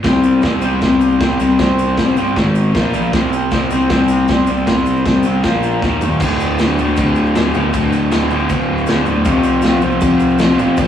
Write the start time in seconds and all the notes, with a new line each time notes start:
0.03 C2 C3 G3 C4, kick, snare, crash, shaker
0.23 C2, shaker
0.42 C2 C3 G3 C4, kick, snare, crash, shaker
0.62 C2 C3 G3 C4, shaker
0.81 C2 C3 G3 C4, kick, snare, crash, shaker
1.01 shaker
1.10 shaker
1.20 C2 C3 G3 C4, kick, snare, crash, shaker
1.39 C2 C3 G3 C4, shaker
1.59 C2 C3 G3 C4, kick, snare, crash, shaker
1.78 C2, shaker
1.97 C2 C3 G3 C4, kick, snare, crash, shaker
2.16 G1 C3 G3 C4, shaker
2.36 G#1 G#2 D#3 G#3, kick, snare, crash, shaker
2.55 shaker
2.65 shaker
2.73 A#1 A#2 F3 A#3, kick, snare, crash, shaker
2.93 A#1 A#2 F3 A#3, shaker
3.12 C2 C3 G3 C4, kick, snare, crash, shaker
3.31 C2, shaker
3.51 C2 C3 G3 C4, kick, snare, crash, shaker
3.70 C2 C3 G3 C4, shaker
3.90 C2 C3 G3 C4, kick, snare, crash, shaker
4.08 shaker
4.28 C2 C3 G3 C4, kick, snare, crash, shaker
4.47 C2 C3 G3 C4, shaker
4.67 C2 C3 G3 C4, kick, snare, crash, shaker
4.86 C2, shaker
4.97 shaker
5.05 C2 C3 G3 C4, kick, snare, crash, shaker
5.23 C2 C3 G3 C4, shaker
5.43 A#1 A#2 F3 A#3, kick, snare, crash, shaker
5.63 shaker
5.82 D#1 D#2 A#2 D#3, kick, snare, shaker
6.01 D#1 D#2 A#2 D#3, floor tom, shaker
6.20 D1 D2 A2 D3, kick, crash, shaker
6.40 D1, shaker
6.59 D1 D2 A2 D3, snare, crash, shaker
6.78 D1 D2 A2 D3, shaker
6.88 shaker
6.96 D2 A2 D3, kick, crash, shaker
7.15 D1, shaker
7.26 shaker
7.35 D1 D2 A2 D3, snare, crash, shaker
7.54 D1 D2 A2 D3, shaker
7.73 D1 D2 A2 D3, kick, crash, shaker
7.92 D1, shaker
8.12 D1 D2 A2 D3, snare, crash, shaker
8.30 D1 D2 A2 D3, shaker
8.40 shaker
8.49 F1 D2 A2 D3, kick, crash, shaker
8.68 D1
8.78 shaker
8.87 D1 D2 A2, snare, crash, shaker
8.91 D3
9.06 D1 D2 A2 D3, shaker
9.25 C2 F2 C3 F3, kick, crash, shaker
9.43 C2, shaker
9.62 C2 F2 C3 F3, snare, crash, shaker
9.81 C2 F2 C3 F3, shaker
9.91 shaker
10.01 C2 F2 C3 F3, kick, crash, shaker
10.20 C2, shaker
10.29 shaker
10.38 C2 F2 C3 F3, snare, crash, shaker
10.59 A1 F2 C3 F3, shaker
10.77 A#1 A#2 F3 A#3, kick, crash, shaker